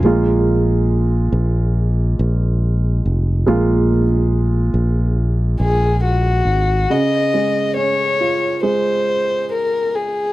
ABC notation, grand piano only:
X:1
M:4/4
L:1/8
Q:1/4=70
K:Gblyd
V:1 name="Grand piano"
[A,B,F]8 | [A,B,F] z6 z | D, A, D F A,4 |]